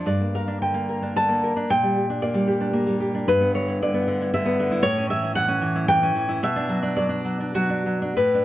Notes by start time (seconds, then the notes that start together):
0.06 G2 D5
0.21 A#3
0.35 A#4 F5
0.48 D4
0.62 D3 G5
0.74 A#3
0.89 A#4
1.02 D4
1.16 D3 A5
1.29 A#3
1.43 A#4
1.56 D4
1.70 A#2 G5
1.83 G3
1.96 G4
2.10 D4
2.22 A#3 D5
2.34 G3
2.47 G4
2.61 D4
2.73 A#3
2.87 G3
3.00 G4
3.15 D4
3.28 G2 B4
3.41 B3
3.54 D3 C#5
3.68 E4
3.82 D3 D5
3.94 B3
4.07 D3
4.22 E4
4.34 D3 E5
4.46 B3
4.59 D3
4.72 E4
4.83 A2 C#5
4.98 C#4
5.10 E3 E5
5.23 E4
5.35 E3 F#5
5.48 C#4
5.62 E3
5.76 E4
5.88 E3 G5
6.03 C#4
6.15 E3
6.29 E4
6.43 B2 E5
6.56 D4
6.69 F#3
6.82 D4
6.96 F#3 D5
7.09 D4
7.24 F#3
7.40 D4
7.54 F#3 F#4
7.70 D4
7.86 F#3
8.02 D4
8.17 A2 B4
8.35 D4